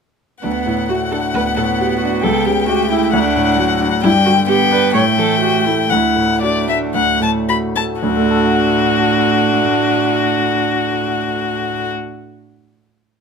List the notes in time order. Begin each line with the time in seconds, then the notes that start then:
0.43 D2 B3 D4 F#5
0.66 A2 E4
0.89 A3 F#4
1.11 D4 A4
1.34 D2 B3 B4
1.57 A2 A4
1.79 F#4 G4
2.00 D4 F#4
2.23 C#2 A4 G5
2.46 C#3 G4
2.68 A3 F#4 G4
2.91 E4
3.13 D2 D4 F#5
3.36 A2
3.57 F#3 F#4
3.81 D4
4.02 G2 G3 E4 G5
4.25 D3 F#4
4.47 B3 G4 G5
4.71 D4 B4
4.94 A2 A3 C#5 G5
5.17 E3 A4
5.41 F#4 G4
5.66 A3 E4
5.90 D2 A3 E4 F#5
6.16 A2
6.42 D4 F#4 D5
6.68 A3 E5
6.94 D2 F#5
7.21 A2 A5
7.48 F#4 B5
7.76 A3 A5
8.01 D2 A2 D4 F#4
8.09 D3
8.17 A3
8.23 F#4
8.31 A4
8.37 F#5